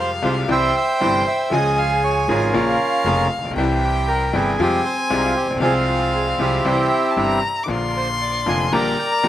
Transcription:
Already playing: F2 C3 F3 G3 G#3 F4 G4 F5
0.00 C5
0.22 C2 C3 G3 G#3 F4 G4 C5
0.48 C2 C3 E3 G3 C4 E4 G4 C5 E5 G5
0.77 E5
1.00 G1 G2 C3 E3 G3 C4 E4 G4 G5
1.27 E5
1.51 C#2 C#3 F3 G#3 C#4 F4 G#4 D#5 G#5
1.78 F5
2.04 C#5
2.28 G#1 G#2 C#3 F3 G#3 C#4 F4 G#4 A#4
2.53 A#1 A#2 C#3 F3 A#3 C#4 F4 A#4 F5
3.04 F1 F2 C#3 F3 A#3 C#4 F4 A#4
3.37 A1
3.43 A#1
3.50 B1
3.56 C2 C3 E3 G3 C4 E4 G4 G5
3.84 G4
4.08 A#4
4.33 G1 G2 C3 E3 G3 C4 E4 G4 G#4
4.58 F2 C3 F3 G3 G#3 C4 F4 G4 G#5
4.85 C5
5.09 C2 C3 G3 G#3 F4 G4
5.17 D#4
5.24 F4
5.36 G4
5.42 A1
5.48 A#1
5.55 B1
5.60 C2 C3 F3 G#3 C4 F4 G#4 F5
5.64 F4
5.88 F4
6.16 G#4
6.38 C2 C3 F3 G#3 C4 E4 F4 G4 G#4
6.65 C2 C3 E3 G3 C4 E4 G4 G5
7.11 A5
7.16 G1 G2 C3 E3 G3 C4 E4 G4 A#5
7.63 D3 D6
7.67 A#1 A#2 F3 A#3 D4 F4 C6
7.97 C5
8.22 D5
8.46 F1 F2 D3 F3 A#3 D4 F4 G#5
8.72 A#1 A#2 D3 G3 A#3 D4 G4 A#4 D5 G5 A#5
8.99 G5
9.12 A#5
9.23 A#1 A#2 D3 G3 A#3 D4 G4

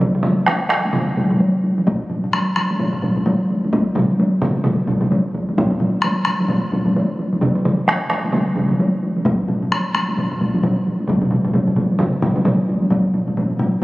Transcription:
0.00 taiko, taiko mid, taiko high
0.15 taiko mid
0.23 taiko mid, taiko high
0.47 taiko rim, taiko high
0.69 taiko rim
0.85 taiko high
0.93 taiko mid, taiko high
1.17 taiko, taiko mid, taiko high
1.30 taiko mid, taiko high
1.40 taiko high
1.64 taiko high
1.78 taiko high
1.87 taiko, taiko low-mid, taiko high
2.10 taiko low-mid, taiko high
2.24 taiko low-mid
2.33 taiko rim, taiko high
2.56 taiko rim, taiko high
2.71 taiko high
2.80 taiko low-mid, taiko high
2.93 taiko low-mid
3.02 taiko, taiko low-mid, taiko high
3.16 taiko low-mid, taiko high
3.26 taiko low-mid, taiko high
3.51 taiko high
3.65 taiko high
3.73 taiko, taiko high
3.95 taiko low-mid, taiko mid, taiko high
4.10 taiko high
4.20 taiko high
4.42 taiko low-mid, taiko mid, taiko high
4.57 taiko high
4.64 taiko low-mid, taiko mid, taiko high
4.87 taiko, taiko low-mid, taiko mid, taiko high
5.01 taiko low-mid, taiko mid, taiko high
5.12 taiko high
5.34 taiko, taiko high
5.49 taiko high
5.58 taiko, taiko low-mid, taiko high
5.71 taiko low-mid
5.80 taiko low-mid, taiko high
6.02 taiko rim, taiko high
6.25 taiko rim, taiko high
6.40 taiko high
6.48 taiko low-mid, taiko high
6.72 taiko, taiko low-mid, taiko high
6.86 taiko low-mid, taiko high
6.96 taiko high
7.19 taiko high
7.33 taiko high
7.41 taiko, taiko mid, taiko high
7.55 taiko mid
7.65 taiko mid, taiko high
7.88 taiko rim, taiko high
8.10 taiko rim, taiko high
8.25 taiko high
8.33 taiko mid, taiko high
8.56 taiko, taiko mid, taiko high
8.69 taiko mid, taiko high
8.80 taiko high
9.03 taiko high
9.17 taiko high
9.25 taiko, taiko low-mid, taiko high
9.48 taiko low-mid, taiko high
9.63 taiko low-mid
9.72 taiko rim, taiko high
9.95 taiko rim, taiko high
10.09 taiko high
10.18 taiko low-mid, taiko high
10.31 taiko low-mid
10.41 taiko, taiko low-mid, taiko high
10.54 taiko low-mid, taiko high
10.63 taiko low-mid, taiko high
10.86 taiko high
11.00 taiko high
11.08 taiko, taiko low-mid, taiko mid, taiko high
11.22 taiko low-mid, taiko mid
11.31 taiko low-mid, taiko mid, taiko high
11.45 taiko low-mid, taiko mid, taiko high
11.53 taiko low-mid, taiko mid, taiko high
11.67 taiko low-mid, taiko mid
11.76 taiko low-mid, taiko mid, taiko high
11.91 taiko high
11.99 taiko low-mid, taiko mid, taiko high
12.22 taiko, taiko low-mid, taiko mid, taiko high
12.36 taiko low-mid, taiko mid, taiko high
12.45 taiko low-mid, taiko mid, taiko high
12.69 taiko, taiko high
12.82 taiko high
12.90 taiko, taiko low-mid, taiko high
13.06 taiko high
13.14 taiko low-mid, taiko high
13.28 taiko low-mid, taiko high
13.37 taiko low-mid, taiko high
13.50 taiko low-mid, taiko high
13.59 taiko low-mid, taiko high
13.74 taiko high

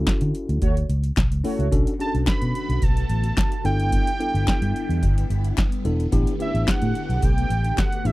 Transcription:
Already playing: C#4 E4 F#4 A4
0.07 muted fingered electric bass stroke, kick, snare, clap, closed hi-hat
0.21 D3, closed hi-hat
0.35 closed hi-hat
0.49 D2, closed hi-hat
0.62 D2 A3 F#4 C#5, kick, closed hi-hat
0.77 closed hi-hat
0.89 C#2, closed hi-hat
1.04 closed hi-hat
1.17 B1, kick, snare, clap, closed hi-hat
1.32 C#2, closed hi-hat
1.44 A3 C#4 E4 F#4 A4 C#5, open hi-hat
1.59 C#2, closed hi-hat
1.71 B1 D3 A3 B3 C#4 D4 F#4 A4, kick, closed hi-hat
1.87 closed hi-hat
1.99 C#4 D4 F#4 G#4 A5, closed hi-hat
2.07 A4
2.14 B1, closed hi-hat
2.27 B5, kick, snare, clap, closed hi-hat
2.42 B2, closed hi-hat
2.55 B5, closed hi-hat
2.69 B1, closed hi-hat
2.82 B1 A5, kick, closed hi-hat
2.97 closed hi-hat
3.10 A1, closed hi-hat
3.24 closed hi-hat
3.37 kick, snare, clap, closed hi-hat
3.52 closed hi-hat
3.65 G1 D3 G3 B3 D4 E4 A4 G5, closed hi-hat
3.80 closed hi-hat
3.92 kick, closed hi-hat
4.07 closed hi-hat
4.20 B3 D4 E4 A4, closed hi-hat
4.34 G1, closed hi-hat
4.47 kick, snare, clap, closed hi-hat
4.62 G2, closed hi-hat
4.76 closed hi-hat
4.89 E2, closed hi-hat
5.03 G1, kick, closed hi-hat
5.18 closed hi-hat
5.30 G1, closed hi-hat
5.44 closed hi-hat
5.58 kick, snare, clap, closed hi-hat
5.72 closed hi-hat
5.85 E1 B3 D4 E4 A4, closed hi-hat
6.00 closed hi-hat
6.12 A1 A3 B3 D4 E4 G4, kick, closed hi-hat
6.27 closed hi-hat
6.40 B3 C#4 E4 G4 E5, closed hi-hat
6.46 D4
6.54 A1, closed hi-hat
6.68 F#5, kick, snare, clap, closed hi-hat
6.82 A2, closed hi-hat
6.95 closed hi-hat
7.09 B1, closed hi-hat
7.17 F#5
7.22 B1 G5, kick, closed hi-hat
7.38 closed hi-hat
7.50 A1, closed hi-hat
7.64 closed hi-hat
7.78 F#5, kick, snare, clap, closed hi-hat
7.92 closed hi-hat
8.05 A1 B3 D4 E4 G4 E5, closed hi-hat

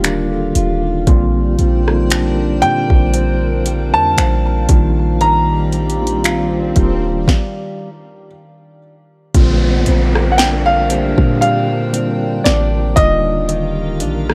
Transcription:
Already playing: D#1 D3 D#3 G3 A#3 D4 F4 G4 F5
0.03 D4 G4 A#4, finger snap, closed hi-hat
0.32 F4 A4
0.55 D#1 F4, closed hi-hat
0.84 D#4 G4
1.06 A#1 A#2 D3 G3 A#3 C4 D4 F4 A#4 C5 G5, kick, closed hi-hat, swell
1.59 A#1 G3, closed hi-hat
1.86 D3 G3 A#3 C4 D#4, cross-stick
1.94 F4
2.10 D4, finger snap, closed hi-hat
2.62 A#2 D3 G3 A#3 C4 F4 G5, closed hi-hat
2.90 A#1, kick
3.14 C4 F5, closed hi-hat
3.66 G3, closed hi-hat
3.94 F2 A5
4.18 A#1 C4, finger snap, closed hi-hat
4.69 A#1 D#3 G3 A#3 D4 F4 G4 D5, kick, closed hi-hat
5.21 D#3 A#5, closed hi-hat
5.72 G3, closed hi-hat
5.90 closed hi-hat
6.00 D#3 G3 A#3 D4 F4
6.07 closed hi-hat
6.24 F4, finger snap, closed hi-hat
6.76 D#1 D#3 G3 A#3 D4 F4, kick, closed hi-hat
7.28 kick, snare
9.34 A#1 A#2 D3 G3 A#3 C4 D4 F4 A#4 C5 G5, kick, closed hi-hat, downlifter
9.86 A#1 C4, closed hi-hat
10.15 cross-stick
10.32 F#5
10.38 D4 G5, snare, closed hi-hat
10.66 F5
10.89 D3 G3 A#3 C4 G4, closed hi-hat
11.18 A#2, kick
11.41 G3 F5, closed hi-hat
11.93 D3 G3 A#3 C4 F4, closed hi-hat
12.44 A1 D4 D5, snare, closed hi-hat
12.96 D#1 D3 D#3 G3 A#3 F4 G4 A#4 D#5 F5, kick, closed hi-hat
13.49 D#3, closed hi-hat
14.00 A#1 D4, closed hi-hat
14.30 cross-stick

